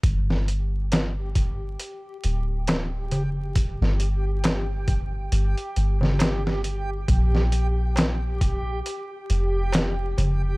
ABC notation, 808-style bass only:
X:1
M:4/4
L:1/16
Q:"Swing 16ths" 1/4=68
K:Gm
V:1 name="808-style bass" clef=bass
G,,,8 z2 D,,,4 F,,,2- | F,,, G,,,6- G,,, G,,, z G,,,6 | B,,,8 z2 F,,,4 F,,,2 |]